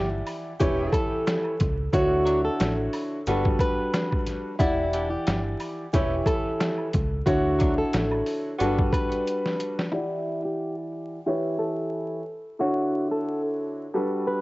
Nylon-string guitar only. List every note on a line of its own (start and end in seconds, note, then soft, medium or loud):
0.92 1.89 A4 medium
1.94 2.42 F#4 loud
2.45 2.75 A4 medium
3.61 4.56 B4 medium
4.59 5.08 E4 loud
5.10 5.41 G4 medium
6.26 7.22 A4 medium
7.26 7.75 F#4 loud
7.78 8.08 A4 medium
8.93 9.89 B4 medium
9.92 10.41 E4 loud
10.45 10.75 G4 medium
11.59 12.55 A4 medium
12.60 13.09 F#4 loud
13.11 13.41 A4 medium
14.27 14.41 B4 medium